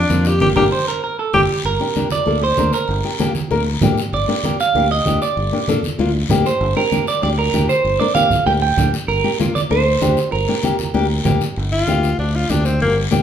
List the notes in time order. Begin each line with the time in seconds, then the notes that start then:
Already playing: D4
0.09 F2 A#3 D4 F4, high conga, short guiro
0.25 G4, short guiro
0.40 G1 A#3 D4 G4, high conga, long guiro
0.56 G1 A#3 D4 G4 A#4, high conga, long guiro
0.72 C5
0.88 A#4
1.04 A#4
1.19 A4
1.33 G1 A#3 D4 G4, high conga, long guiro
1.64 G1 A#4, long guiro
1.80 A#3 D4 G4
1.95 A#3 D4 G4, high conga, short guiro
2.10 D5, high conga, short guiro
2.26 D2 A#3 D4 A4, long guiro
2.44 C5
2.57 D2 A#3 D4 A#4, high conga, short guiro
2.73 A#4, short guiro
2.88 G1, long guiro
3.04 A#3 D4 G4
3.19 A#3 D4 G4, high conga, short guiro
3.35 high conga, short guiro
3.50 D2 A#3 D4 A#4, long guiro
3.81 D2 A#3 D4 G4, high conga, low conga, short guiro
3.98 short guiro
4.13 G1 D5, long guiro
4.28 A#3 D4 G4
4.43 A#3 D4 G4, high conga, short guiro
4.60 F5, short guiro
4.75 D2 A#3 D4 G4, long guiro
4.91 D#5
5.05 D2 A#3 D4 G4, high conga, short guiro
5.22 D5, short guiro
5.37 G1, long guiro
5.52 A#3 D4 G4
5.68 A#3 D4 A4, high conga, short guiro
5.83 high conga, short guiro
5.99 D2 A#3 D4 F4, long guiro
6.29 D2 A#3 D4 G4, high conga, low conga, short guiro
6.46 C5, short guiro
6.61 G1, long guiro
6.76 A#3 D4 G4 A#4
6.92 A#3 D4 G4, high conga, short guiro
7.07 D5, short guiro
7.22 D2 A#3 D4 G4 D5, long guiro
7.39 A#4
7.53 D2 A#3 D4 G4, high conga, short guiro
7.69 C5, short guiro
7.84 G1, long guiro
8.00 A#3 D4 A#4 D5
8.15 A#3 D4 G4 F5, high conga, short guiro
8.30 high conga, low conga, short guiro
8.46 D2 A#3 D4 G4 G5, long guiro
8.62 G5
8.77 D2 A#3 D4 G4, high conga, low conga, short guiro
8.94 short guiro
9.08 G1 A#4, long guiro
9.24 A#3 D4 G4
9.39 A#3 D4 F4, high conga, short guiro
9.55 D5, high conga, short guiro
9.70 D2 A#3 D4 A4 C5, long guiro
10.01 D2 A#3 D4 G4, high conga, short guiro
10.17 short guiro
10.32 G1 A#4, long guiro
10.48 A#3 D4 G4
10.63 A#3 D4 G4, high conga, short guiro
10.79 high conga, short guiro
10.94 D2 A#3 D4 G4, long guiro
11.24 D2 A#3 D4 G4, high conga, low conga, short guiro
11.41 short guiro
11.56 G1, long guiro
11.72 F4
11.87 D2 A#3 D4 G4, high conga, short guiro
12.03 short guiro
12.19 D2 D4, long guiro
12.36 F4
12.50 D2 A#3 D4 G4, high conga, short guiro
12.65 C4, short guiro
12.80 G1 A#3, long guiro
13.11 D2 A#3 D4 G4, high conga, short guiro